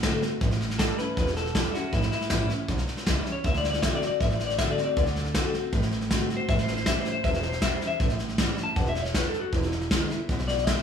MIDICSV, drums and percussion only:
0, 0, Header, 1, 2, 480
1, 0, Start_track
1, 0, Tempo, 380228
1, 524, Time_signature, 4, 2, 24, 8
1, 13664, End_track
2, 0, Start_track
2, 0, Title_t, "Drums"
2, 37, Note_on_c, 9, 38, 114
2, 37, Note_on_c, 9, 44, 85
2, 40, Note_on_c, 9, 36, 90
2, 163, Note_off_c, 9, 38, 0
2, 163, Note_off_c, 9, 44, 0
2, 166, Note_off_c, 9, 36, 0
2, 280, Note_on_c, 9, 38, 36
2, 407, Note_off_c, 9, 38, 0
2, 520, Note_on_c, 9, 36, 114
2, 522, Note_on_c, 9, 38, 37
2, 644, Note_off_c, 9, 38, 0
2, 644, Note_on_c, 9, 38, 37
2, 647, Note_off_c, 9, 36, 0
2, 767, Note_off_c, 9, 38, 0
2, 767, Note_on_c, 9, 38, 38
2, 887, Note_off_c, 9, 38, 0
2, 887, Note_on_c, 9, 38, 35
2, 1000, Note_on_c, 9, 36, 90
2, 1001, Note_off_c, 9, 38, 0
2, 1001, Note_on_c, 9, 38, 116
2, 1001, Note_on_c, 9, 44, 91
2, 1126, Note_off_c, 9, 36, 0
2, 1127, Note_off_c, 9, 38, 0
2, 1127, Note_off_c, 9, 44, 0
2, 1241, Note_on_c, 9, 38, 35
2, 1368, Note_off_c, 9, 38, 0
2, 1478, Note_on_c, 9, 36, 116
2, 1479, Note_on_c, 9, 38, 37
2, 1604, Note_off_c, 9, 38, 0
2, 1604, Note_on_c, 9, 38, 34
2, 1605, Note_off_c, 9, 36, 0
2, 1717, Note_off_c, 9, 38, 0
2, 1717, Note_on_c, 9, 38, 37
2, 1843, Note_off_c, 9, 38, 0
2, 1844, Note_on_c, 9, 38, 36
2, 1955, Note_on_c, 9, 36, 89
2, 1956, Note_off_c, 9, 38, 0
2, 1956, Note_on_c, 9, 38, 118
2, 1956, Note_on_c, 9, 44, 92
2, 2082, Note_off_c, 9, 36, 0
2, 2083, Note_off_c, 9, 38, 0
2, 2083, Note_off_c, 9, 44, 0
2, 2200, Note_on_c, 9, 38, 36
2, 2327, Note_off_c, 9, 38, 0
2, 2433, Note_on_c, 9, 36, 111
2, 2434, Note_on_c, 9, 38, 35
2, 2553, Note_off_c, 9, 38, 0
2, 2553, Note_on_c, 9, 38, 38
2, 2559, Note_off_c, 9, 36, 0
2, 2672, Note_off_c, 9, 38, 0
2, 2672, Note_on_c, 9, 38, 36
2, 2789, Note_off_c, 9, 38, 0
2, 2789, Note_on_c, 9, 38, 35
2, 2902, Note_off_c, 9, 38, 0
2, 2902, Note_on_c, 9, 38, 119
2, 2902, Note_on_c, 9, 44, 85
2, 2909, Note_on_c, 9, 36, 86
2, 3029, Note_off_c, 9, 38, 0
2, 3029, Note_off_c, 9, 44, 0
2, 3035, Note_off_c, 9, 36, 0
2, 3151, Note_on_c, 9, 38, 33
2, 3277, Note_off_c, 9, 38, 0
2, 3384, Note_on_c, 9, 38, 37
2, 3389, Note_on_c, 9, 36, 114
2, 3507, Note_off_c, 9, 38, 0
2, 3507, Note_on_c, 9, 38, 35
2, 3516, Note_off_c, 9, 36, 0
2, 3628, Note_off_c, 9, 38, 0
2, 3628, Note_on_c, 9, 38, 38
2, 3751, Note_off_c, 9, 38, 0
2, 3751, Note_on_c, 9, 38, 37
2, 3869, Note_on_c, 9, 36, 90
2, 3870, Note_off_c, 9, 38, 0
2, 3870, Note_on_c, 9, 38, 112
2, 3870, Note_on_c, 9, 44, 89
2, 3995, Note_off_c, 9, 36, 0
2, 3997, Note_off_c, 9, 38, 0
2, 3997, Note_off_c, 9, 44, 0
2, 4112, Note_on_c, 9, 38, 37
2, 4239, Note_off_c, 9, 38, 0
2, 4348, Note_on_c, 9, 36, 118
2, 4350, Note_on_c, 9, 38, 36
2, 4471, Note_off_c, 9, 38, 0
2, 4471, Note_on_c, 9, 38, 38
2, 4474, Note_off_c, 9, 36, 0
2, 4592, Note_off_c, 9, 38, 0
2, 4592, Note_on_c, 9, 38, 39
2, 4712, Note_off_c, 9, 38, 0
2, 4712, Note_on_c, 9, 38, 33
2, 4829, Note_on_c, 9, 36, 89
2, 4833, Note_off_c, 9, 38, 0
2, 4833, Note_on_c, 9, 38, 114
2, 4833, Note_on_c, 9, 44, 92
2, 4956, Note_off_c, 9, 36, 0
2, 4959, Note_off_c, 9, 38, 0
2, 4959, Note_off_c, 9, 44, 0
2, 5073, Note_on_c, 9, 38, 37
2, 5199, Note_off_c, 9, 38, 0
2, 5309, Note_on_c, 9, 36, 110
2, 5309, Note_on_c, 9, 38, 36
2, 5434, Note_off_c, 9, 38, 0
2, 5434, Note_on_c, 9, 38, 34
2, 5435, Note_off_c, 9, 36, 0
2, 5550, Note_off_c, 9, 38, 0
2, 5550, Note_on_c, 9, 38, 36
2, 5670, Note_off_c, 9, 38, 0
2, 5670, Note_on_c, 9, 38, 39
2, 5787, Note_off_c, 9, 38, 0
2, 5787, Note_on_c, 9, 38, 108
2, 5787, Note_on_c, 9, 44, 87
2, 5790, Note_on_c, 9, 36, 88
2, 5914, Note_off_c, 9, 38, 0
2, 5914, Note_off_c, 9, 44, 0
2, 5916, Note_off_c, 9, 36, 0
2, 6031, Note_on_c, 9, 38, 36
2, 6157, Note_off_c, 9, 38, 0
2, 6271, Note_on_c, 9, 38, 36
2, 6272, Note_on_c, 9, 36, 120
2, 6390, Note_off_c, 9, 38, 0
2, 6390, Note_on_c, 9, 38, 38
2, 6398, Note_off_c, 9, 36, 0
2, 6512, Note_off_c, 9, 38, 0
2, 6512, Note_on_c, 9, 38, 39
2, 6628, Note_off_c, 9, 38, 0
2, 6628, Note_on_c, 9, 38, 36
2, 6748, Note_off_c, 9, 38, 0
2, 6748, Note_on_c, 9, 38, 125
2, 6748, Note_on_c, 9, 44, 89
2, 6750, Note_on_c, 9, 36, 98
2, 6874, Note_off_c, 9, 38, 0
2, 6874, Note_off_c, 9, 44, 0
2, 6876, Note_off_c, 9, 36, 0
2, 6990, Note_on_c, 9, 38, 36
2, 7116, Note_off_c, 9, 38, 0
2, 7228, Note_on_c, 9, 38, 36
2, 7230, Note_on_c, 9, 36, 113
2, 7346, Note_off_c, 9, 38, 0
2, 7346, Note_on_c, 9, 38, 36
2, 7356, Note_off_c, 9, 36, 0
2, 7465, Note_off_c, 9, 38, 0
2, 7465, Note_on_c, 9, 38, 39
2, 7588, Note_off_c, 9, 38, 0
2, 7588, Note_on_c, 9, 38, 37
2, 7709, Note_off_c, 9, 38, 0
2, 7709, Note_on_c, 9, 36, 90
2, 7709, Note_on_c, 9, 38, 110
2, 7709, Note_on_c, 9, 44, 94
2, 7835, Note_off_c, 9, 36, 0
2, 7835, Note_off_c, 9, 38, 0
2, 7835, Note_off_c, 9, 44, 0
2, 7954, Note_on_c, 9, 38, 35
2, 8080, Note_off_c, 9, 38, 0
2, 8188, Note_on_c, 9, 38, 36
2, 8189, Note_on_c, 9, 36, 115
2, 8304, Note_off_c, 9, 38, 0
2, 8304, Note_on_c, 9, 38, 37
2, 8315, Note_off_c, 9, 36, 0
2, 8427, Note_off_c, 9, 38, 0
2, 8427, Note_on_c, 9, 38, 38
2, 8542, Note_off_c, 9, 38, 0
2, 8542, Note_on_c, 9, 38, 34
2, 8660, Note_off_c, 9, 38, 0
2, 8660, Note_on_c, 9, 38, 120
2, 8660, Note_on_c, 9, 44, 95
2, 8664, Note_on_c, 9, 36, 92
2, 8786, Note_off_c, 9, 38, 0
2, 8786, Note_off_c, 9, 44, 0
2, 8790, Note_off_c, 9, 36, 0
2, 8899, Note_on_c, 9, 38, 33
2, 9025, Note_off_c, 9, 38, 0
2, 9136, Note_on_c, 9, 38, 34
2, 9141, Note_on_c, 9, 36, 107
2, 9260, Note_off_c, 9, 38, 0
2, 9260, Note_on_c, 9, 38, 34
2, 9267, Note_off_c, 9, 36, 0
2, 9375, Note_off_c, 9, 38, 0
2, 9375, Note_on_c, 9, 38, 36
2, 9498, Note_off_c, 9, 38, 0
2, 9498, Note_on_c, 9, 38, 40
2, 9616, Note_off_c, 9, 38, 0
2, 9616, Note_on_c, 9, 38, 113
2, 9616, Note_on_c, 9, 44, 92
2, 9620, Note_on_c, 9, 36, 93
2, 9742, Note_off_c, 9, 38, 0
2, 9742, Note_off_c, 9, 44, 0
2, 9746, Note_off_c, 9, 36, 0
2, 9860, Note_on_c, 9, 38, 37
2, 9986, Note_off_c, 9, 38, 0
2, 10096, Note_on_c, 9, 38, 36
2, 10099, Note_on_c, 9, 36, 123
2, 10213, Note_off_c, 9, 38, 0
2, 10213, Note_on_c, 9, 38, 35
2, 10225, Note_off_c, 9, 36, 0
2, 10337, Note_off_c, 9, 38, 0
2, 10337, Note_on_c, 9, 38, 36
2, 10460, Note_off_c, 9, 38, 0
2, 10460, Note_on_c, 9, 38, 33
2, 10581, Note_off_c, 9, 38, 0
2, 10581, Note_on_c, 9, 38, 117
2, 10581, Note_on_c, 9, 44, 90
2, 10582, Note_on_c, 9, 36, 86
2, 10707, Note_off_c, 9, 38, 0
2, 10707, Note_off_c, 9, 44, 0
2, 10709, Note_off_c, 9, 36, 0
2, 10821, Note_on_c, 9, 38, 34
2, 10947, Note_off_c, 9, 38, 0
2, 11061, Note_on_c, 9, 38, 35
2, 11063, Note_on_c, 9, 36, 119
2, 11181, Note_off_c, 9, 38, 0
2, 11181, Note_on_c, 9, 38, 34
2, 11189, Note_off_c, 9, 36, 0
2, 11301, Note_off_c, 9, 38, 0
2, 11301, Note_on_c, 9, 38, 36
2, 11423, Note_off_c, 9, 38, 0
2, 11423, Note_on_c, 9, 38, 39
2, 11544, Note_off_c, 9, 38, 0
2, 11544, Note_on_c, 9, 38, 117
2, 11544, Note_on_c, 9, 44, 90
2, 11545, Note_on_c, 9, 36, 89
2, 11670, Note_off_c, 9, 38, 0
2, 11670, Note_off_c, 9, 44, 0
2, 11672, Note_off_c, 9, 36, 0
2, 11786, Note_on_c, 9, 38, 35
2, 11912, Note_off_c, 9, 38, 0
2, 12023, Note_on_c, 9, 38, 37
2, 12027, Note_on_c, 9, 36, 112
2, 12148, Note_off_c, 9, 38, 0
2, 12148, Note_on_c, 9, 38, 38
2, 12153, Note_off_c, 9, 36, 0
2, 12268, Note_off_c, 9, 38, 0
2, 12268, Note_on_c, 9, 38, 37
2, 12387, Note_off_c, 9, 38, 0
2, 12387, Note_on_c, 9, 38, 33
2, 12509, Note_off_c, 9, 38, 0
2, 12509, Note_on_c, 9, 38, 125
2, 12509, Note_on_c, 9, 44, 91
2, 12510, Note_on_c, 9, 36, 94
2, 12635, Note_off_c, 9, 38, 0
2, 12635, Note_off_c, 9, 44, 0
2, 12636, Note_off_c, 9, 36, 0
2, 12750, Note_on_c, 9, 38, 35
2, 12877, Note_off_c, 9, 38, 0
2, 12990, Note_on_c, 9, 38, 35
2, 12991, Note_on_c, 9, 36, 107
2, 13110, Note_off_c, 9, 38, 0
2, 13110, Note_on_c, 9, 38, 35
2, 13117, Note_off_c, 9, 36, 0
2, 13231, Note_off_c, 9, 38, 0
2, 13231, Note_on_c, 9, 38, 37
2, 13353, Note_off_c, 9, 38, 0
2, 13353, Note_on_c, 9, 38, 37
2, 13471, Note_off_c, 9, 38, 0
2, 13471, Note_on_c, 9, 38, 116
2, 13471, Note_on_c, 9, 44, 87
2, 13472, Note_on_c, 9, 36, 91
2, 13597, Note_off_c, 9, 38, 0
2, 13597, Note_off_c, 9, 44, 0
2, 13598, Note_off_c, 9, 36, 0
2, 13664, End_track
0, 0, End_of_file